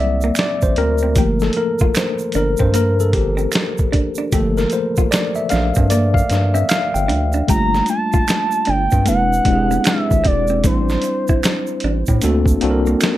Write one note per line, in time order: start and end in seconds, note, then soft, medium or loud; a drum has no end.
0.00 0.31 C2 medium
0.00 0.73 F#3 soft
0.00 0.73 A#3 soft
0.00 0.74 C4 medium
0.00 0.39 D5 medium
0.00 0.39 E5 loud
0.00 1.19 F#5 medium
0.21 0.34 A#3 medium
0.21 shaker soft
0.35 0.63 D5 medium
0.35 finger snap medium
0.35 snare loud
0.35 closed hi-hat medium
0.35 shaker medium
0.39 muted hollow-body jazz guitar stroke soft
0.62 0.75 A1 medium
0.62 0.78 C5 medium
0.62 kick medium
0.62 shaker soft
0.76 1.18 D2 medium
0.76 0.94 C4 medium
0.76 1.43 A#4 medium
0.76 closed hi-hat medium
0.98 shaker soft
1.03 1.13 C4 medium
1.15 1.50 G1 loud
1.15 1.73 F3 soft
1.15 1.73 A3 soft
1.15 1.73 A#3 medium
1.15 1.34 G4 medium
1.15 kick loud
1.15 closed hi-hat medium
1.15 shaker medium
1.40 1.57 A4 medium
1.40 snare soft
1.40 shaker soft
1.53 1.97 A#4 medium
1.53 closed hi-hat medium
1.57 muted hollow-body jazz guitar stroke soft
1.79 1.91 F4 medium
1.79 kick loud
1.79 shaker soft
1.95 2.37 C5 medium
1.95 finger snap medium
1.95 muted hollow-body jazz guitar stroke soft
1.95 snare medium
1.95 closed hi-hat medium
1.95 shaker medium
2.19 shaker soft
2.32 2.56 G1 medium
2.32 2.52 D4 medium
2.32 closed hi-hat medium
2.32 shaker soft
2.36 2.61 A#4 medium
2.57 3.15 G2 medium
2.57 2.70 C4 medium
2.57 2.75 C5 medium
2.57 kick medium
2.57 shaker soft
2.74 2.91 A#3 medium
2.74 2.86 A#4 medium
2.74 closed hi-hat medium
2.74 shaker medium
3.00 3.14 A4 medium
3.00 shaker soft
3.13 3.47 G1 loud
3.13 3.32 G4 medium
3.13 muted hollow-body jazz guitar stroke soft
3.13 kick medium
3.13 closed hi-hat medium
3.37 3.48 C4 medium
3.37 shaker soft
3.52 finger snap medium
3.52 muted hollow-body jazz guitar stroke soft
3.52 snare loud
3.52 closed hi-hat medium
3.52 shaker medium
3.78 kick medium
3.78 shaker soft
3.92 4.09 D4 medium
3.92 kick medium
3.92 closed hi-hat medium
4.15 4.28 D4 medium
4.15 shaker soft
4.32 4.66 G1 loud
4.32 7.45 F3 soft
4.32 7.45 A3 soft
4.32 7.45 A#3 medium
4.32 4.49 G4 medium
4.32 4.58 A4 medium
4.32 kick loud
4.32 closed hi-hat medium
4.32 shaker medium
4.57 4.64 A#4 medium
4.57 snare soft
4.57 shaker soft
4.70 5.09 C5 medium
4.70 muted hollow-body jazz guitar stroke soft
4.70 closed hi-hat medium
4.70 shaker soft
4.96 5.08 F4 medium
4.96 kick medium
4.96 shaker soft
5.11 5.36 D5 medium
5.11 finger snap medium
5.11 muted hollow-body jazz guitar stroke soft
5.11 snare medium
5.11 closed hi-hat medium
5.11 shaker medium
5.35 5.51 E5 medium
5.35 shaker soft
5.49 5.72 A#1 medium
5.49 5.68 D4 medium
5.49 5.91 F5 medium
5.49 closed hi-hat medium
5.49 shaker soft
5.54 snare soft
5.75 6.22 G2 medium
5.75 5.86 C4 medium
5.75 kick medium
5.75 shaker medium
5.90 6.08 A#3 medium
5.90 6.15 D5 medium
5.90 closed hi-hat medium
5.90 shaker medium
6.14 6.51 F5 medium
6.14 kick medium
6.14 shaker soft
6.30 6.64 G2 medium
6.30 muted hollow-body jazz guitar stroke soft
6.30 snare soft
6.30 closed hi-hat medium
6.30 shaker soft
6.54 6.65 C4 medium
6.54 6.70 E5 medium
6.54 shaker soft
6.69 6.80 F5 loud
6.69 finger snap medium
6.69 muted hollow-body jazz guitar stroke soft
6.69 snare loud
6.69 closed hi-hat medium
6.69 shaker medium
6.94 7.11 G1 medium
6.94 7.45 G5 medium
6.94 shaker soft
7.08 7.43 D2 medium
7.08 7.25 D4 medium
7.08 closed hi-hat medium
7.33 7.44 D4 medium
7.33 shaker soft
7.48 7.82 G1 medium
7.48 8.98 G3 medium
7.48 7.50 A3 soft
7.48 8.99 A3 medium
7.48 8.99 D4 medium
7.48 8.99 F4 medium
7.48 7.65 G4 medium
7.48 7.86 A#5 loud
7.48 kick loud
7.48 closed hi-hat medium
7.48 shaker medium
7.55 9.01 A#3 medium
7.74 snare soft
7.74 shaker soft
7.86 8.71 A5 loud
7.86 muted hollow-body jazz guitar stroke soft
7.86 closed hi-hat medium
7.86 shaker soft
8.13 8.23 F4 medium
8.13 kick medium
8.13 shaker soft
8.28 finger snap medium
8.28 muted hollow-body jazz guitar stroke soft
8.28 snare medium
8.28 closed hi-hat medium
8.28 shaker medium
8.51 shaker soft
8.65 8.88 G1 medium
8.65 8.84 D4 medium
8.65 9.07 G5 loud
8.65 closed hi-hat medium
8.91 9.10 G2 loud
8.91 9.02 C4 medium
8.91 kick medium
8.91 shaker soft
9.06 9.41 E1 medium
9.06 9.43 G#3 medium
9.06 9.23 A#3 medium
9.06 9.44 C4 medium
9.06 9.44 D4 medium
9.06 9.45 E4 medium
9.06 9.45 B4 medium
9.06 9.89 F#5 loud
9.06 closed hi-hat medium
9.06 shaker medium
9.33 shaker soft
9.45 9.79 E1 medium
9.45 10.58 G#3 medium
9.45 10.58 C4 medium
9.45 10.59 D4 medium
9.45 10.59 E4 medium
9.45 9.55 G4 medium
9.45 muted hollow-body jazz guitar stroke soft
9.45 kick medium
9.45 closed hi-hat medium
9.55 10.63 G#4 medium
9.71 9.81 B3 medium
9.71 shaker soft
9.84 10.28 E5 loud
9.84 finger snap medium
9.84 muted hollow-body jazz guitar stroke soft
9.84 snare loud
9.84 closed hi-hat medium
9.84 shaker medium
10.11 10.23 G#1 medium
10.11 kick medium
10.11 shaker soft
10.24 10.66 E1 medium
10.24 10.41 C4 medium
10.24 10.65 D5 medium
10.24 kick medium
10.24 closed hi-hat medium
10.47 10.60 C4 medium
10.47 shaker soft
10.64 10.98 A1 loud
10.64 12.14 G3 medium
10.64 10.81 A3 medium
10.64 10.72 B3 soft
10.64 12.15 D4 medium
10.64 12.15 E4 medium
10.64 12.19 C5 medium
10.64 12.15 C5 medium
10.64 kick loud
10.64 closed hi-hat medium
10.64 shaker medium
10.71 12.18 C4 medium
10.89 snare soft
10.89 shaker soft
11.02 muted hollow-body jazz guitar stroke soft
11.02 closed hi-hat medium
11.02 shaker soft
11.28 11.39 E4 medium
11.28 kick loud
11.28 shaker soft
11.43 finger snap medium
11.43 muted hollow-body jazz guitar stroke soft
11.43 snare medium
11.43 closed hi-hat medium
11.43 shaker medium
11.67 shaker soft
11.80 12.04 A1 medium
11.80 closed hi-hat medium
11.84 12.00 D4 medium
12.06 12.21 A2 medium
12.06 12.18 C4 medium
12.06 kick medium
12.06 shaker soft
12.22 12.57 D2 loud
12.22 12.40 A3 medium
12.22 12.59 A#3 medium
12.22 12.60 C4 medium
12.22 12.60 D4 medium
12.22 12.61 F#4 medium
12.22 12.61 A4 medium
12.22 closed hi-hat medium
12.22 shaker medium
12.46 kick medium
12.46 shaker soft
12.61 12.96 C2 medium
12.61 13.18 A#3 medium
12.61 13.18 C4 medium
12.61 13.18 D4 medium
12.61 13.18 F#4 medium
12.61 12.71 A4 medium
12.61 muted hollow-body jazz guitar stroke soft
12.61 closed hi-hat medium
12.71 13.18 A#4 medium
12.86 12.97 A#3 medium
12.86 shaker soft
13.01 finger snap medium
13.01 muted hollow-body jazz guitar stroke soft
13.01 snare loud
13.01 closed hi-hat medium
13.01 shaker medium